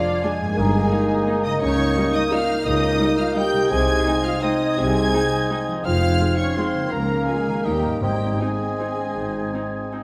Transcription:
Already playing: french horn section F3, harp F3 G#3 D4 D5, bassoon D4, violin section F4 F5, clarinet F4, cor anglais D5, flute section G#6
0.24 viola section G#3 D4, french horn section G#3, violin section G#4 G#5
0.40 harp G2
0.45 harp A#3
0.50 harp D#4
0.54 double bass section G1, cello section G2, bassoon A#3, clarinet D#4, harp A#4
0.58 cor anglais D#5, flute section A#5
0.91 viola section A#3 D#4
1.28 viola section A#3 D#4
1.44 harp C#3, french horn section D#4, violin section D#5 D#6
1.49 harp A#3
1.54 harp D#4
1.58 double bass section C#2, cello section C#3, bassoon A#3, clarinet D#4, harp G4, violin section C#5 C#6, cor anglais D#5
1.63 french horn section C#4, flute section G6
1.97 viola section G3 D#4
2.14 french horn section D#4, violin section D#5 D#6
2.31 viola section G3 D#4, french horn section F4, violin section F5 F6
2.65 double bass section C#2, cello section C#3, bassoon A#3, clarinet D#4, french horn section D#4, cor anglais D#5, violin section D#5 D#6, flute section G6
3.00 viola section G3 D#4
3.17 french horn section F4, violin section F5 F6
3.35 viola section G3 D#4, bassoon A#3, clarinet D#4, french horn section G4, cor anglais D#5, violin section G5 G6, flute section G6
3.53 harp C3
3.57 harp C4
3.62 harp D#4
3.66 bassoon C4, harp G#4, flute section G#6
3.70 double bass section C2, cello section C3, clarinet D#4, french horn section G#4, cor anglais D#5, violin section G#5 G#6
4.06 viola section G#3 D#4
4.24 french horn section F4, violin section F5 F6
4.42 viola section G#3 D#4, bassoon C4, french horn section D#4, clarinet D#4, violin section D#5 D#6, cor anglais D#5, flute section G#6
4.78 double bass section C2, cello section C3, bassoon C4, clarinet D#4, french horn section G#4, cor anglais D#5, violin section G#5 G#6, flute section G#6
5.14 viola section G#3 D#4
5.50 viola section G#3 D#4
5.68 harp F3
5.72 harp C4
5.77 harp D#4
5.81 harp G#4, violin section F6
5.85 double bass section F1, cello section F2, bassoon C4, clarinet D#4, french horn section F4, cor anglais F5, violin section F5, flute section G#6
6.20 viola section G#3 F4
6.39 french horn section C#4, violin section C#5 C#6
6.57 viola section G#3 F4, bassoon C4, french horn section C4, clarinet D#4, violin section C5 C6, cor anglais F5, flute section G#6
6.74 harp C#3
6.79 harp A#3
6.83 harp F4
6.88 harp A#4, flute section A#5, violin section A#5
6.92 cello section C#2, double bass section C#2, bassoon A#3, french horn section A#3, clarinet C#4, violin section A#4, cor anglais F5
7.26 french horn section G#3, viola section A#3 F4, violin section G#4 G#5
7.47 harp D#3
7.51 harp A#3
7.56 harp D#4
7.60 harp D#5
7.64 cello section D#2, double bass section D#2, french horn section G3, bassoon A#3, viola section A#3 D#4, clarinet D#4, violin section G4 G5, cor anglais D#5, flute section A#5
7.84 harp G#2
7.89 harp C4
7.93 harp D#4
7.98 double bass section G#1, timpani G#2, harp D#5
8.02 cello section G#2, french horn section G3, bassoon C4, clarinet D#4, violin section G4 G5, cor anglais D#5, flute section G#6
8.40 french horn section G#3, clarinet C4, bassoon C4, viola section C4 D#4, violin section G#4 G#5, cor anglais D#5, flute section G#6
8.80 viola section C4 D#4
8.97 clarinet C#4
9.15 double bass section G#1, cello section G#2, clarinet D#4
9.54 viola section C4 D#4, clarinet C4
9.93 viola section C4 D#4, clarinet C4

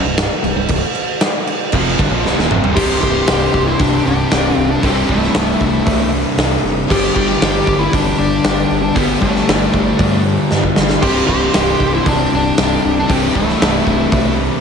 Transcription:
0.04 fingered electric bass C1, overdriven electric guitar C2 G2
0.17 snare, crash
0.43 fingered electric bass C1, overdriven electric guitar C2 G2, crash
0.56 fingered electric bass C1, overdriven electric guitar C2 G2
0.68 fingered electric bass C1, overdriven electric guitar C2 G2, kick, crash
0.95 crash
1.21 snare, crash
1.47 crash
1.72 fingered electric bass F1, overdriven electric guitar F2 C3 F3, kick, crash
1.99 fingered electric bass G1, overdriven electric guitar G2 D3, kick, crash
2.10 fingered electric bass A#1, overdriven electric guitar A#2 F3
2.24 fingered electric bass C1, overdriven electric guitar C2 G2, snare
2.35 fingered electric bass D#1, overdriven electric guitar D#2 A#2, snare
2.39 distorted electric guitar D#2
2.49 fingered electric bass F1, overdriven electric guitar F2 C3, mid tom
2.62 fingered electric bass C1, overdriven electric guitar C2 G2, floor tom
2.73 fingered electric bass C1, overdriven electric guitar C2 G2 C3, lead electric guitar G4 C5, kick, crash
3.01 fingered electric bass C1, lead electric guitar G4 C5, kick
3.27 fingered electric bass C1, snare, open hi-hat
3.54 fingered electric bass C1, kick
3.67 lead electric guitar E4 C5
3.78 fingered electric bass C1, overdriven electric guitar C2 G2 C3, lead electric guitar D4 G4, kick, open hi-hat
4.05 fingered electric bass C1, lead electric guitar D4 G4
4.31 fingered electric bass C1, snare, open hi-hat
4.54 fingered electric bass C1, lead electric guitar C4 F4
4.71 lead electric guitar D4 A4
4.80 fingered electric bass C1, overdriven electric guitar C2 G2 C3, lead electric guitar C4, kick, open hi-hat
4.86 lead electric guitar G4
5.09 fingered electric bass C1, lead electric guitar A3 E4, kick
5.23 snare
5.34 fingered electric bass C1, snare, open hi-hat
5.61 fingered electric bass C1, kick
5.85 overdriven electric guitar C2 G2 C3, fingered electric bass C2, kick, open hi-hat
6.37 fingered electric bass C2, snare, open hi-hat
6.63 fingered electric bass F1
6.88 fingered electric bass G1, overdriven electric guitar G2 D3 G3, lead electric guitar G4 D5, kick, crash
7.15 fingered electric bass G1, lead electric guitar G4 D5, kick
7.29 snare
7.41 fingered electric bass G1, snare, open hi-hat
7.67 fingered electric bass G1, kick
7.79 lead electric guitar E4 B4
7.91 fingered electric bass G1, overdriven electric guitar G2 D3 G3, lead electric guitar D4 G4, kick, open hi-hat
8.18 fingered electric bass G1, lead electric guitar D4 G4
8.44 fingered electric bass G1, snare, open hi-hat
8.70 fingered electric bass G1
8.82 lead electric guitar D4 A4
8.94 fingered electric bass G1, overdriven electric guitar G2 D3 G3, lead electric guitar B3 G4, kick, open hi-hat
9.21 fingered electric bass G1, lead electric guitar A3 D4, kick
9.36 snare
9.48 fingered electric bass G1, snare, open hi-hat
9.74 fingered electric bass G1, kick
9.97 overdriven electric guitar G2 D3 G3, fingered electric bass G2, kick, open hi-hat
10.51 fingered electric bass G2, snare
10.64 kick
10.76 fingered electric bass G1, snare
10.90 snare
11.00 fingered electric bass C1, overdriven electric guitar C2 G2 C3, lead electric guitar G4 C5, kick, crash
11.26 fingered electric bass C1, lead electric guitar G4 C5, kick
11.54 fingered electric bass C1, snare, open hi-hat
11.80 fingered electric bass C1, kick
11.94 lead electric guitar E4 C5
12.03 fingered electric bass C1, overdriven electric guitar C2 G2 C3, kick, open hi-hat
12.08 lead electric guitar D4 G4
12.32 fingered electric bass C1, lead electric guitar D4 G4
12.57 fingered electric bass C1, snare, open hi-hat
12.84 fingered electric bass C1
12.99 lead electric guitar D4 A4
13.08 fingered electric bass C1, overdriven electric guitar C2 G2 C3, lead electric guitar C4 G4, kick, open hi-hat
13.35 fingered electric bass C1, lead electric guitar A3 E4, kick
13.49 snare
13.60 fingered electric bass C1, snare, open hi-hat
13.87 fingered electric bass C1, kick
14.11 overdriven electric guitar C2 G2 C3, fingered electric bass C2, kick, open hi-hat

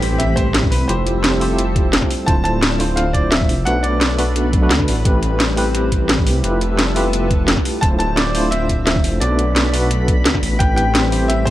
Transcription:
Already playing: detuned saw bass A1, analog synth pad G3 C4 B5, tine electric piano C4 E4 G4 B4, grand piano G5, impact
0.00 tine electric piano A3 C4 E4 G4 C5, open hi-hat
0.18 grand piano E5, snare, closed hi-hat
0.36 grand piano C5, kick, closed hi-hat
0.54 snare, closed hi-hat
0.63 kick
0.71 detuned saw bass C2, grand piano B4, open hi-hat
0.88 detuned saw bass F1, analog synth pad G3 C4 A4 E5, tine electric piano A3 E4 F4 G4 C5, grand piano C5, closed hi-hat
1.07 closed hi-hat
1.24 snare, closed hi-hat
1.40 tine electric piano A3 E4 F4 G4 C5, open hi-hat
1.59 closed hi-hat
1.76 kick, closed hi-hat
1.93 snare, closed hi-hat
2.02 kick, snare
2.11 open hi-hat
2.26 detuned saw bass D1, tine electric piano A3 D4 E4 F4 C5, analog synth pad C4, grand piano A5, kick, closed hi-hat
2.44 grand piano A5, closed hi-hat
2.63 snare, closed hi-hat
2.79 tine electric piano A3 D4 E4 F4 C5, open hi-hat
2.96 grand piano F5, snare, closed hi-hat
3.13 grand piano D5, kick, closed hi-hat
3.31 grand piano E5, snare, closed hi-hat
3.41 kick
3.49 detuned saw bass F1, open hi-hat
3.65 detuned saw bass B1, tine electric piano A3 B3 D4 F#4 B4, analog synth pad A3 D4 B4, grand piano F#5, closed hi-hat
3.83 grand piano D5, closed hi-hat
4.01 snare, closed hi-hat
4.17 tine electric piano A3 B3 D4 F#4 B4, open hi-hat
4.36 closed hi-hat
4.53 kick, closed hi-hat
4.61 tine electric piano A3 B3 D4 F#4 B4
4.71 detuned saw bass D2, snare, closed hi-hat
4.80 kick, snare
4.88 detuned saw bass A1, open hi-hat
5.04 detuned saw bass A1, analog synth pad G3 C4, tine electric piano A3 C4 E4 G4 B4, kick, closed hi-hat
5.23 closed hi-hat
5.40 snare, closed hi-hat
5.56 tine electric piano A3 C4 E4 G4 B4, open hi-hat
5.75 snare, closed hi-hat
5.92 kick, closed hi-hat
6.09 snare, closed hi-hat
6.18 kick
6.27 detuned saw bass C2, open hi-hat
6.43 detuned saw bass F1, tine electric piano A3 E4 F4 G4 B4, analog synth pad B3 A4 E5, closed hi-hat
6.61 closed hi-hat
6.79 snare, closed hi-hat
6.95 tine electric piano A3 E4 F4 G4 B4, open hi-hat
7.13 closed hi-hat
7.31 kick, closed hi-hat
7.48 snare, closed hi-hat
7.57 kick, snare
7.65 open hi-hat
7.81 detuned saw bass D1, tine electric piano A3 D4 E4 F4 C5, analog synth pad C4, grand piano A5, kick, closed hi-hat
7.99 grand piano A5, closed hi-hat
8.16 grand piano D5, snare, closed hi-hat
8.34 tine electric piano A3 D4 E4 F4 C5, open hi-hat
8.51 grand piano E5, snare, closed hi-hat
8.69 kick, closed hi-hat
8.86 grand piano E5, snare, closed hi-hat
8.96 kick
9.04 detuned saw bass F1, open hi-hat
9.20 detuned saw bass B1, tine electric piano A3 B3 D4 F#4 B4, analog synth pad A3 D4 B5, grand piano D5, closed hi-hat
9.39 closed hi-hat
9.56 snare, closed hi-hat
9.72 tine electric piano A3 B3 D4 F#4 B4, open hi-hat
9.91 closed hi-hat
10.08 kick, closed hi-hat
10.25 detuned saw bass D2, snare, closed hi-hat
10.34 kick, snare
10.43 detuned saw bass A1, open hi-hat
10.59 detuned saw bass A1, analog synth pad G3 C4, tine electric piano A3 C4 E4 G4 B4, grand piano G5, kick, closed hi-hat
10.76 grand piano G5, closed hi-hat
10.95 snare, closed hi-hat
11.11 tine electric piano A3 C4 E4 G4 C5, open hi-hat
11.28 grand piano E5, snare, closed hi-hat
11.45 grand piano C5, kick, closed hi-hat

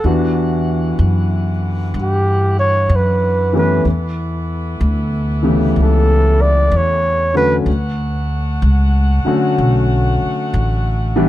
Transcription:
Already playing: saxophone section F#5
0.04 upright bass E2, saxophone section D3 E3 E4, grand piano E3 B3 D4 F#4 G4
0.99 upright bass F#2
1.94 upright bass G2
2.02 flugelhorn G4
2.59 flugelhorn C#5
2.89 upright bass F#2
2.96 flugelhorn B4
3.53 grand piano E3 A3 B3 C#4 G4
3.57 flugelhorn B4
3.85 upright bass E2, saxophone section B3 E4 A4
4.81 upright bass D2
5.42 grand piano C#3 E3 A3 B3 G4
5.76 upright bass C#2
5.82 flugelhorn A4
6.41 flugelhorn D5
6.72 upright bass E2
6.77 flugelhorn C#5
7.34 grand piano D3 F#3 A3 C#4 F#4, flugelhorn B4
7.66 upright bass D2, saxophone section A3 C#5 F#5
8.62 upright bass C#2
9.25 grand piano D3 F#3 A3 C#4 F#4, muted upright bass stroke
9.58 upright bass B1
10.22 muted upright bass stroke
10.54 upright bass A1
11.16 grand piano E3 G3 B3 D4 G4

